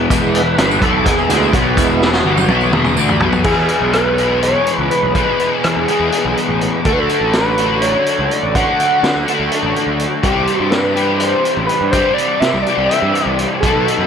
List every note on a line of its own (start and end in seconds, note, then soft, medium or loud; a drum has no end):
0.00 0.10 E2 medium
0.00 0.74 E2 medium
0.00 0.10 B2 medium
0.00 1.34 B2 medium
0.00 0.11 E3 loud
0.00 0.16 E3 medium
0.10 0.55 E1 medium
0.10 0.58 E2 loud
0.10 0.58 B2 loud
0.10 0.42 E3 medium
0.10 0.59 E3 loud
0.10 0.42 G#3 soft
0.10 0.43 B3 medium
0.10 kick loud
0.10 closed hi-hat loud
0.10 tambourine loud
0.16 1.99 E3 medium
0.24 tambourine soft
0.35 0.84 B4 loud
0.35 closed hi-hat medium
0.58 0.80 G1 medium
0.58 0.81 G2 medium
0.58 0.82 D3 loud
0.58 0.82 G3 loud
0.58 snare loud
0.58 closed hi-hat loud
0.71 3.23 E2 medium
0.71 tambourine medium
0.82 1.04 B1 medium
0.82 1.06 B2 medium
0.82 1.06 F#3 loud
0.82 1.07 B3 loud
0.82 1.07 A4 loud
0.82 kick loud
0.82 closed hi-hat medium
1.04 1.28 E1 medium
1.04 1.30 E2 medium
1.04 1.29 B2 medium
1.04 1.30 E3 medium
1.04 1.54 G#4 medium
1.04 kick loud
1.04 snare soft
1.04 closed hi-hat loud
1.04 tambourine soft
1.19 tambourine soft
1.27 1.52 D2 medium
1.27 1.53 D3 medium
1.27 1.50 E3 soft
1.27 1.51 G#3 soft
1.27 1.53 A3 medium
1.27 1.51 B3 medium
1.27 1.54 D4 loud
1.27 snare soft
1.27 closed hi-hat medium
1.27 tambourine medium
1.34 8.49 B2 medium
1.42 tambourine soft
1.51 1.76 B1 loud
1.51 1.77 B2 medium
1.51 1.78 F#3 loud
1.51 1.78 B3 loud
1.51 1.75 F#4 medium
1.51 kick loud
1.51 snare soft
1.51 closed hi-hat medium
1.76 2.22 E1 loud
1.76 2.25 E2 loud
1.76 2.26 B2 loud
1.76 2.08 E3 medium
1.76 2.09 G#3 medium
1.76 2.09 B3 medium
1.76 2.11 E4 medium
1.76 kick loud
1.76 closed hi-hat medium
1.76 tambourine medium
1.80 2.26 E3 loud
1.99 2.62 E3 medium
1.99 snare medium
2.13 2.75 F#4 medium
2.13 snare medium
2.13 tambourine soft
2.25 2.47 G1 medium
2.25 2.49 G2 medium
2.25 2.49 D3 loud
2.25 2.50 G3 loud
2.37 high tom medium
2.37 tambourine medium
2.48 2.71 B1 medium
2.48 2.73 B2 loud
2.48 2.73 F#3 loud
2.48 2.73 B3 loud
2.48 high tom medium
2.61 9.77 E3 medium
2.61 tambourine soft
2.72 2.95 E1 loud
2.72 2.97 E2 medium
2.72 2.97 B2 medium
2.72 2.98 E3 loud
2.72 2.96 G#4 medium
2.72 mid tom medium
2.84 mid tom medium
2.84 tambourine soft
2.96 3.19 D2 medium
2.96 3.21 D3 medium
2.96 3.21 A3 medium
2.96 3.22 D4 loud
2.96 tambourine medium
3.09 floor tom medium
3.09 tambourine soft
3.20 3.43 B1 medium
3.20 10.38 E2 medium
3.20 3.45 B2 medium
3.20 3.46 F#3 loud
3.20 3.46 B3 loud
3.20 floor tom medium
3.33 floor tom medium
3.33 tambourine soft
3.44 3.54 E2 medium
3.44 4.21 E2 medium
3.44 4.17 B2 medium
3.44 6.81 E3 soft
3.44 4.19 E3 medium
3.44 6.81 G#3 soft
3.44 4.19 G#3 medium
3.44 6.81 B3 soft
3.44 4.19 B3 medium
3.44 3.90 G#4 medium
3.44 6.81 G#4 soft
3.44 4.17 G#4 medium
3.44 6.81 B4 medium
3.44 kick medium
3.44 crash medium
3.56 3.66 E2 medium
3.69 closed hi-hat medium
3.80 4.54 B1 medium
3.93 4.39 B4 medium
3.93 cross-stick medium
3.93 closed hi-hat medium
4.18 5.14 E2 medium
4.18 5.15 B2 medium
4.18 5.14 E3 medium
4.18 5.14 G#3 medium
4.18 5.14 B3 medium
4.18 5.13 G#4 medium
4.18 closed hi-hat medium
4.42 4.88 C#5 loud
4.42 closed hi-hat medium
4.66 closed hi-hat soft
4.79 4.88 C#2 medium
4.90 5.13 B4 medium
4.90 closed hi-hat soft
5.03 5.21 B1 medium
5.15 5.86 E2 medium
5.15 5.87 B2 medium
5.15 5.87 E3 medium
5.15 5.87 G#3 medium
5.15 5.87 B3 medium
5.15 5.88 G#4 medium
5.15 5.38 B4 medium
5.15 kick medium
5.15 closed hi-hat medium
5.39 5.50 B4 medium
5.39 closed hi-hat soft
5.64 5.73 E3 medium
5.64 6.57 G#4 medium
5.64 cross-stick medium
5.64 closed hi-hat medium
5.76 5.85 E2 medium
5.88 6.83 E2 medium
5.88 6.84 B2 medium
5.88 6.84 E3 medium
5.88 6.84 G#3 medium
5.88 6.84 B3 medium
5.88 6.85 G#4 medium
5.88 closed hi-hat soft
6.00 6.09 E2 medium
6.12 closed hi-hat medium
6.25 6.34 B1 medium
6.37 closed hi-hat soft
6.49 6.67 A1 medium
6.61 closed hi-hat soft
6.85 6.94 D2 medium
6.85 7.61 D3 medium
6.85 10.21 D3 medium
6.85 10.21 F#3 soft
6.85 10.21 A3 soft
6.85 7.60 A3 medium
6.85 7.60 D4 medium
6.85 10.21 F#4 soft
6.85 10.21 A4 medium
6.85 6.94 A4 medium
6.85 kick medium
6.85 closed hi-hat medium
6.89 7.58 F#4 medium
6.89 7.01 B4 medium
6.97 7.06 D2 medium
6.97 7.33 A4 medium
7.09 closed hi-hat medium
7.21 7.94 A1 medium
7.33 7.83 B4 medium
7.33 snare medium
7.33 closed hi-hat medium
7.58 8.55 A3 medium
7.58 8.54 D4 medium
7.58 8.54 F#4 medium
7.58 closed hi-hat medium
7.62 8.54 D3 medium
7.81 8.34 C#5 medium
7.81 closed hi-hat medium
8.06 closed hi-hat medium
8.19 8.28 C#2 medium
8.31 8.55 D5 medium
8.31 closed hi-hat soft
8.43 8.61 A1 medium
8.55 9.25 D3 medium
8.55 9.26 A3 medium
8.55 9.27 D4 medium
8.55 9.27 F#4 medium
8.55 9.48 F#5 loud
8.55 kick loud
8.55 closed hi-hat medium
8.80 closed hi-hat medium
9.03 9.12 D3 medium
9.03 snare medium
9.03 closed hi-hat medium
9.16 9.24 D2 medium
9.27 10.22 D3 medium
9.27 10.23 A3 medium
9.27 10.23 D4 medium
9.27 10.24 F#4 medium
9.27 closed hi-hat soft
9.40 9.49 D2 medium
9.52 closed hi-hat medium
9.63 9.72 A1 medium
9.76 closed hi-hat soft
9.87 10.05 D2 medium
9.99 closed hi-hat soft
10.23 10.33 C2 medium
10.23 10.98 C3 medium
10.23 10.98 E3 medium
10.23 13.60 E3 medium
10.23 13.59 G3 soft
10.23 10.97 G3 medium
10.23 13.59 C4 soft
10.23 10.96 C4 medium
10.23 10.57 G4 medium
10.23 13.59 G4 soft
10.23 10.95 G4 medium
10.23 13.59 E5 medium
10.23 kick medium
10.23 closed hi-hat medium
10.36 10.45 C2 medium
10.47 closed hi-hat soft
10.57 11.33 G2 medium
10.57 10.68 F#4 medium
10.71 11.17 B4 medium
10.71 snare medium
10.71 closed hi-hat medium
10.96 11.92 C3 medium
10.96 11.93 E3 medium
10.96 11.92 G3 medium
10.96 11.92 C4 medium
10.96 11.92 G4 medium
10.96 closed hi-hat medium
11.18 11.65 C5 medium
11.18 closed hi-hat medium
11.45 closed hi-hat medium
11.57 11.66 A1 medium
11.67 11.90 B4 medium
11.67 closed hi-hat soft
11.81 11.99 G2 medium
11.91 12.64 C3 medium
11.91 12.65 E3 medium
11.91 12.65 G3 medium
11.91 12.13 C5 loud
11.91 kick loud
11.91 closed hi-hat medium
11.95 12.66 C4 medium
11.95 12.66 G4 medium
12.14 12.41 D5 loud
12.18 closed hi-hat medium
12.40 12.51 C3 medium
12.40 12.62 E5 medium
12.40 snare medium
12.40 closed hi-hat medium
12.54 12.63 C2 medium
12.62 12.85 D5 medium
12.66 13.62 C3 medium
12.66 13.63 E3 medium
12.66 13.63 G3 medium
12.66 13.63 C4 medium
12.66 13.64 G4 medium
12.66 closed hi-hat medium
12.78 12.87 C2 medium
12.85 13.27 E5 loud
12.91 closed hi-hat medium
13.02 13.11 G2 medium
13.15 closed hi-hat medium
13.26 13.44 C2 medium
13.26 13.38 D5 loud
13.39 closed hi-hat soft
13.60 13.72 B1 medium
13.60 14.07 B2 medium
13.60 14.07 D#3 medium
13.60 14.07 F#3 soft
13.60 14.07 B3 soft
13.60 14.07 F#4 medium
13.60 14.07 A4 medium
13.60 14.07 B4 medium
13.60 kick loud
13.60 closed hi-hat medium
13.65 14.07 F#3 medium
13.65 14.07 B3 medium
13.65 14.07 D#4 medium
13.65 14.07 F#4 medium
13.75 13.84 B1 medium
13.88 closed hi-hat medium
13.98 14.07 F#2 medium